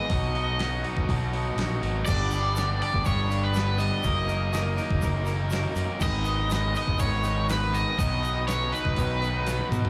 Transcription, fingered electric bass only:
0.10 B1
0.97 B1
1.09 B1
1.56 A#1
1.83 G#1
2.08 G1
2.94 G1
3.06 G1
4.05 F#1
4.91 F#1
5.02 F#1
5.76 F#2
6.01 G#1
6.87 G#1
6.99 G#1
7.98 B1
8.85 B1
8.97 B1
9.72 B2

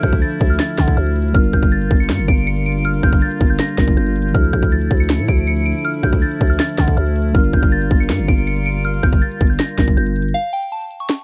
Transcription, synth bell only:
0.03 G6
0.22 A6
0.50 F6
0.60 A6
0.97 F6
1.34 F6
1.53 G6
1.72 A6
2.00 C#7
2.28 D7
2.47 C#7
2.66 D7
2.85 F6
3.03 G6
3.22 A6
3.50 G6
3.59 A#6
3.97 G6
4.34 F6
4.53 G6
4.72 A6
5.00 C#7
5.29 D7
5.47 C#7
5.66 D7
5.85 F6
6.03 G6
6.22 A6
6.50 F6
6.60 A6
6.97 F6
7.35 F6
7.54 G6
7.72 A6
8.00 C#7
8.28 D7
8.47 C#7
8.66 D7
8.85 F6
9.03 G6
9.22 A6
9.50 G6
9.59 A#6
9.97 G6
10.34 F5
10.53 G5
10.72 A5
11.00 C#6

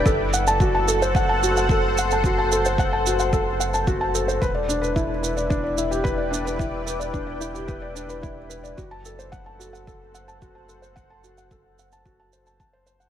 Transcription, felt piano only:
0.06 A4
0.33 F#5
0.47 A5
0.61 F#4
0.75 A5
0.88 A4
1.02 C5
1.16 F#5
1.29 A5
1.43 F#4
1.57 F#5
1.71 A4
1.98 F#5
2.12 A5
2.25 F#4
2.38 A5
2.52 A4
2.66 C5
2.79 F#5
2.93 A5
3.07 F#4
3.19 F#5
3.33 A4
3.60 F#5
3.74 A5
3.88 F#4
4.01 A5
4.15 A4
4.28 C5
4.42 B4
4.55 D5
4.68 D4
4.81 B4
4.96 E4
5.23 B4
5.37 D5
5.50 D4
5.64 D5
5.77 E4
5.91 G4
6.04 B4
6.18 D5
6.31 D4
6.45 B4
6.58 E4
6.86 B4
7.00 D5
7.13 D4
7.27 D5
7.40 E4
7.54 G4
7.68 B4
7.82 D5
7.95 D4
8.09 B4
8.22 E4
8.50 B4
8.63 D5
8.77 F#4
8.91 A5
9.06 A4
9.19 C5
9.32 F#5
9.46 A5
9.59 F#4
9.73 F#5
9.87 A4
10.14 F#5
10.28 A5
10.42 F#4
10.55 A5
10.69 A4
10.82 C5
10.96 F#5
11.10 A5
11.24 F#4
11.38 F#5
11.52 A4
11.79 F#5
11.93 A5
12.06 F#4
12.20 A5
12.33 C5
12.47 A5
12.60 A5
12.73 C5
12.86 C5
13.00 F#5

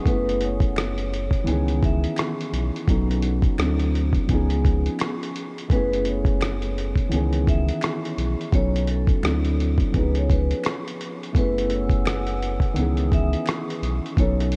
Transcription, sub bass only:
0.06 F#1
1.47 C#2
2.53 B1
2.88 B1
3.59 D2
4.29 C#2
5.70 F#1
7.12 C#2
8.17 B1
8.53 B1
9.23 D2
9.94 C#2
11.35 F#1
12.76 C#2
13.82 B1
14.17 B1

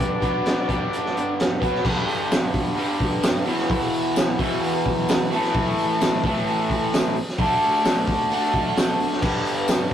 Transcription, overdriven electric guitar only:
Already playing: G2 D3 G3
0.21 B2 F#3 B3
0.68 G2 D3 G3
1.60 B2 F#3 B3
1.82 G2 D3 G3
2.76 G2 D3 G3
3.45 E2 B2 E3
4.39 E2 B2 E3
5.31 A2 E3 A3
6.24 A2 E3 A3
7.38 D3 A3 D4
8.30 D3 A3 D4
9.21 G2 D3 G3

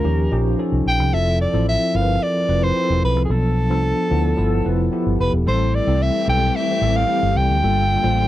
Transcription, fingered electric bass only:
0.05 D#2
0.32 A#1
0.72 C2
0.86 A#1
0.99 C2
1.13 F1
1.54 A1
1.95 G1
2.49 F1
2.90 E1
3.03 B1
3.16 C2
3.30 B1
3.70 C2
4.11 D2
4.38 G1
4.66 F1
5.06 G1
5.20 F1
5.33 E1
5.47 A1
5.87 C2
6.28 B1
6.82 A1
7.23 G1
7.36 C2
7.50 D2
7.63 G1
8.04 A1

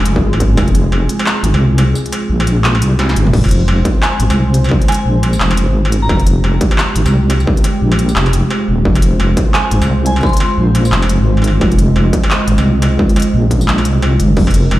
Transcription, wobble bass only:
Already playing: F1
0.16 G#1
0.57 F1
1.43 G#1
1.54 C2
2.30 A#1
2.82 C2
3.16 G1
3.34 F1
4.20 G#1
4.30 C2
5.06 A#1
5.40 F1
5.68 G#1
6.09 F1
6.95 G#1
7.05 C2
7.82 A#1
8.17 F1
8.68 D#1
8.85 F1
9.71 G#1
9.81 C2
10.58 A#1
10.92 F1
11.20 G#1
11.61 F1
12.48 G#1
12.58 C2
13.34 A#1
13.85 C2
14.20 G1
14.37 F1

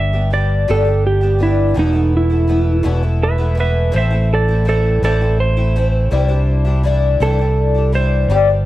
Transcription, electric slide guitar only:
0.00 E5
0.34 D5
0.71 A4
1.07 G4
1.43 E4
1.79 D#4
2.17 E4
3.23 B4 E5
3.60 B4 E5
3.96 C5 E5
4.34 A4 D5
4.69 A4 D5
5.05 A4 D5
5.40 C5
7.23 A4
7.95 C5

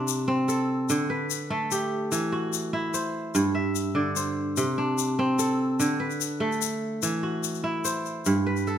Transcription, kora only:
Already playing: C3 D4 C5 D5
0.28 C4
0.48 A4
0.90 D3
1.10 B4
1.50 A3 A4
1.72 G4
2.12 E3
2.32 F#4
2.73 E4
2.94 C5
3.35 G2
3.55 E5
3.95 D3 D5
4.16 C5
4.57 C3
4.78 D4
5.19 C4
5.39 A4
5.80 D3
6.00 B4
6.40 A3 A4
7.03 E3
7.23 F#4
7.64 E4
7.84 C5
8.26 G2
8.46 B4
8.67 A4

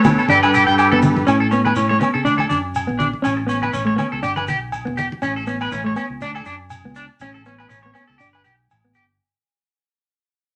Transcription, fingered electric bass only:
0.05 D2
0.29 G1
0.44 G2
0.68 G2
1.28 A2
1.76 A2
2.15 C#3
2.26 D2
2.51 F#2
2.89 A#1
3.25 A1
3.73 A1
4.13 C#2
4.23 G1
4.48 B1
4.87 E1
5.22 A1
5.71 A1
6.10 C#2
6.21 D2
6.45 F#2
6.84 C#2
7.21 A1
7.70 A1
8.09 C#2
8.20 G1
8.46 B1
8.71 A1

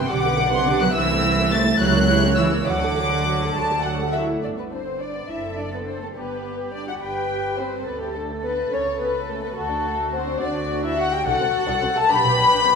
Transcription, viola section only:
Already playing: B3
0.10 D4 G4
0.25 B3 B4
0.38 D4 G4
0.52 B3 B4
0.66 D4 G4
0.81 B3 B4
0.95 C4 E4
1.09 A3 C4
1.24 C4 E4
1.38 A3 C4
1.51 C4 E4
1.65 A3 C4
1.80 G3 E4
1.95 A#3 C#4
2.09 G3 E4
2.24 A#3 C#4
2.39 G3 E4
2.54 A#3 C#4
2.69 F#3 F#4
2.83 A3 A4
2.98 F#3 F#4
3.12 A3 A4
3.27 F#3 F#4
3.42 A3 A4
3.56 F#3 F#4
3.70 A3 A4
3.85 F#3 F#4
4.01 A3 A4
4.15 F#3 E4 F#4
4.29 A3 A4
4.44 D4
4.57 B3
4.71 C4
5.01 D4
5.29 E4
5.58 D4
5.72 B3
5.86 C4
6.01 A3
6.15 B3
6.72 D4
6.87 F#4
7.02 G4
7.59 C4
7.87 B3
8.01 G3
8.15 A3
8.44 B3
8.72 C#4
9.00 B3
9.28 A3
9.42 B3
9.56 A3
10.14 C4
10.42 D4
10.84 E4
10.98 F#4
11.12 G4
11.26 F#4
11.96 A4
12.10 B4

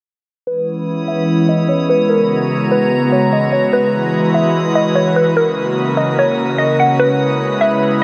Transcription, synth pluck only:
0.47 B4
1.08 E5
1.49 D#5
1.69 C#5
1.90 B4
2.09 A#4
2.71 B4
3.12 C#5
3.33 D#5
3.53 C#5
3.73 B4
4.34 E5
4.75 D#5
4.95 C#5
5.16 B4
5.37 A#4
5.97 D#5
6.19 C#5
6.58 D#5
6.80 F#5
7.00 B4
7.61 E5

